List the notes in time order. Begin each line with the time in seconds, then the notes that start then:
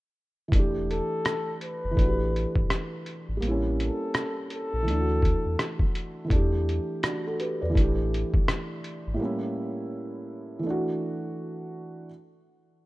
0.48 E3 A3, kick
0.52 E1 D4, closed hi-hat
0.59 G4
0.90 A4, closed hi-hat
1.25 cross-stick, closed hi-hat
1.61 B4, closed hi-hat
1.84 F#1
1.91 E3 A3
1.97 A1 D4, kick, closed hi-hat
2.02 F#4
2.09 G4
2.36 closed hi-hat
2.56 G1, kick
2.70 cross-stick, closed hi-hat
3.06 closed hi-hat
3.29 G#1
3.37 G3 A#3
3.42 A1 C4, closed hi-hat
3.48 C#4 E4
3.80 A4, closed hi-hat
4.14 cross-stick, closed hi-hat
4.50 A4, closed hi-hat
4.73 A#1
4.83 E3 A3
4.87 D2 D4, closed hi-hat
4.94 E4
5.00 F#4
5.22 kick, closed hi-hat
5.46 E2
5.59 cross-stick, closed hi-hat
5.79 kick
5.95 closed hi-hat
6.25 E3 A3
6.30 E2 D4, kick, closed hi-hat
6.36 G4
6.69 closed hi-hat
7.03 D4 F#4, cross-stick, closed hi-hat
7.27 F#4 A4
7.40 G4 B4, closed hi-hat
7.62 E2 B4 D5
7.70 E3 A3
7.75 A1 D4, kick, closed hi-hat
7.81 G4
8.14 closed hi-hat
8.34 G1, kick
8.48 cross-stick, closed hi-hat
8.84 closed hi-hat
9.07 G#1
9.14 A2 G3
9.20 A#3 C#4
9.25 E4
10.59 E3 A3
10.66 D4 F#4